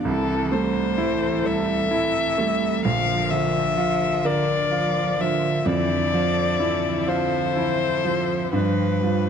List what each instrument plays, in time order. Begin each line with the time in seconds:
Already playing: string section G4
0.05 grand piano C2, cello E3, string section E3 A4, violin A4
0.51 cello G3, grand piano A3, violin C5
0.98 cello E3, grand piano E4
1.44 cello G3, grand piano A4, violin E5
1.91 cello E3, grand piano E4
2.38 cello G3, grand piano A3
2.85 grand piano A#1, string section D3 F4 A#4, cello F3, violin F5
3.30 cello D3, grand piano F3, violin E5
3.77 cello F3, grand piano F4
4.25 cello D3, grand piano A#4, violin D5
4.71 cello F3, grand piano F4
5.19 cello D3, grand piano F3, violin E5
5.65 grand piano F2, cello E3, string section A4 E5, violin D5
6.12 cello F3, grand piano F3
6.58 cello E3, grand piano E4
7.06 cello F3, grand piano F4, violin C5
7.54 cello E3, grand piano E4
8.04 grand piano F3, cello F3
8.51 grand piano G2, cello F3, string section F3 D4 G4, violin B4
9.01 grand piano F3, cello G3